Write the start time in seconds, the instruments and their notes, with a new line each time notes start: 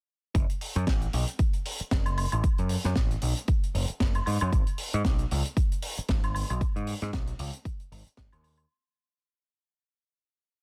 0.35 picked electric bass F#1, kick, closed hi-hat
0.50 closed hi-hat
0.61 open hi-hat
0.76 picked electric bass F#2, closed hi-hat
0.87 picked electric bass A1, kick, snare, closed hi-hat
1.01 closed hi-hat
1.13 picked electric bass B1, open hi-hat
1.27 closed hi-hat
1.39 kick, closed hi-hat
1.53 closed hi-hat
1.65 open hi-hat
1.80 muted picked electric bass stroke, closed hi-hat
1.91 picked electric bass F#1, kick, snare, closed hi-hat
2.06 closed hi-hat, high woodblock
2.17 open hi-hat, high woodblock
2.32 picked electric bass A1, closed hi-hat, high woodblock
2.43 muted picked electric bass stroke, kick, closed hi-hat
2.58 picked electric bass F#2, closed hi-hat
2.69 open hi-hat
2.84 picked electric bass F#2, snare, closed hi-hat
2.96 picked electric bass A1, kick, snare, closed hi-hat
3.11 closed hi-hat
3.22 picked electric bass B1, open hi-hat
3.37 closed hi-hat
3.48 kick, closed hi-hat
3.63 closed hi-hat
3.75 picked electric bass F#1, open hi-hat
3.88 muted picked electric bass stroke, closed hi-hat
4.00 picked electric bass F#1, kick, snare, closed hi-hat
4.14 closed hi-hat, high woodblock
4.26 picked electric bass G#2, open hi-hat, high woodblock
4.40 picked electric bass F#2, closed hi-hat, high woodblock
4.53 picked electric bass G#1, kick, closed hi-hat
4.67 closed hi-hat
4.78 open hi-hat
4.93 picked electric bass G#2, closed hi-hat
5.05 picked electric bass B1, kick, snare, closed hi-hat
5.18 closed hi-hat
5.31 picked electric bass C#2, open hi-hat
5.45 closed hi-hat
5.57 kick, closed hi-hat
5.72 closed hi-hat
5.82 open hi-hat
5.98 muted picked electric bass stroke, closed hi-hat
6.08 picked electric bass G#1, kick, snare, closed hi-hat
6.23 closed hi-hat, high woodblock
6.35 open hi-hat, high woodblock
6.50 picked electric bass B1, closed hi-hat, high woodblock
6.61 muted picked electric bass stroke, kick, closed hi-hat
6.76 picked electric bass G#2, closed hi-hat
6.87 open hi-hat
7.02 picked electric bass G#2, snare, closed hi-hat
7.13 picked electric bass B1, kick, snare, closed hi-hat
7.27 closed hi-hat
7.39 picked electric bass C#2, open hi-hat
7.53 closed hi-hat
7.65 kick, closed hi-hat
7.80 closed hi-hat
7.92 picked electric bass G#1, open hi-hat
8.06 closed hi-hat
8.17 picked electric bass G#1, kick, snare, closed hi-hat
8.32 picked electric bass D#2, closed hi-hat, high woodblock
8.44 open hi-hat, high woodblock
8.58 closed hi-hat, high woodblock